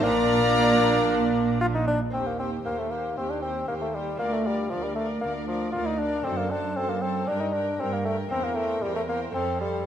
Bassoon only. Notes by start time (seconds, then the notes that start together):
0.04 A#3
1.61 F4
1.75 D#4
1.88 D4
2.13 C4
2.27 A#3
2.39 C4
2.65 A#3
2.79 A3
2.91 A#3
3.17 C4
3.30 D4
3.42 C4
3.68 A#3
3.81 A3
3.95 G3
4.19 A#3
4.33 A3
4.46 G3
4.71 F3
4.84 G3
4.96 A3
5.21 A#3
5.48 F3
5.72 F4
5.86 D#4
5.99 D4
6.24 C4
6.37 A#3
6.51 D4
6.76 C4
6.89 A#3
7.02 C4
7.28 D4
7.41 D#4
7.54 D4
7.80 C4
7.93 A#3
8.05 A3
8.31 C4
8.44 A#3
8.56 A3
8.82 G3
8.96 A3
9.09 A#3
9.35 C4
9.61 G3